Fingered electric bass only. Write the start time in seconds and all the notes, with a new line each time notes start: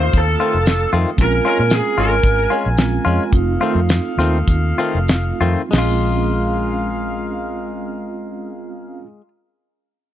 0.14 D#2
0.54 F1
0.93 F2
1.18 A#1
1.59 A#2
1.98 G#1
2.23 G#1
2.66 A#1
3.06 F2
3.33 F1
3.75 F2
4.18 D#2
4.48 D#2
4.95 F1
5.41 F2
5.73 A#1